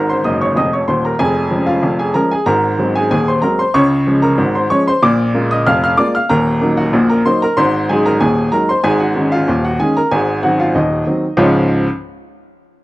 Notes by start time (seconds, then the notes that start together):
Already playing: G#1 G#2
0.09 C5 C6
0.24 F#1 F#2 D#5 D#6
0.41 C#5 C#6
0.56 F1 F2 D#5 D#6
0.73 C#5 C#6
0.88 D#1 D#2 C5 C6
1.05 A#4 A#5
1.19 F1 F2 G#4 G#5
1.51 F3 G#3 C#4
1.66 F4 F5
1.83 F1 F2
1.99 G#4 G#5
2.14 F3 G#3 C#4 A#4 A#5
2.31 G#4 G#5
2.46 G#1 G#2 A#4 A#5
2.79 F#3 G#3 C4
2.95 G#4 G#5
3.11 D#1 D#2 G#4 G#5
3.28 C5 C6
3.42 F#3 G#3 C4 A#4 A#5
3.59 C5 C6
3.74 C#2 C#3 C#5 C#6
4.07 F3 G#3 C#4
4.22 A#4 A#5
4.38 G#1 G#2
4.55 C5 C6
4.70 F3 G#3 C#4 C#5 C#6
4.88 C5 C6
5.02 A#1 A#2 D5 D6
5.34 G#3 A#3 F4
5.51 D#5 D#6
5.67 F1 F2 F5 F6
5.84 F5 F6
5.97 G#3 A#3 F4 D5 D6
6.15 F5 F6
6.29 D#1 D#2 A#4 A#5
6.61 F#3 A#3 D#4
6.77 F#4 F#5
6.93 A#1 A#2
7.10 A#4 A#5
7.25 F#3 A#3 D#4 C5 C6
7.42 A#4 A#5
7.57 G#1 G#2 C5 C6
7.89 F#3 G#3 D#4 G#4 G#5
8.06 A#4 A#5
8.20 D#1 D#2 G#4 G#5
8.52 F#3 G#3 D#4 A#4 A#5
8.69 C5 C6
8.84 G#1 G#2 G#4 G#5
9.00 F#4 F#5
9.16 D#3 G#3 C#4
9.32 F4 F5
9.48 D#1 D#2
9.65 F#4 F#5
9.80 D#3 G#3 C#4 G#4 G#5
9.97 A#4 A#5
10.11 G#1 G#2 G#4 G#5
10.43 D#3 F#3 C4 F#4 F#5
10.60 F4 F5
10.75 D#1 D#2 D#4 D#5
11.07 D#3 F#3 C4
11.37 C#2 G#2 F3 G#3 C#4 F4 C#5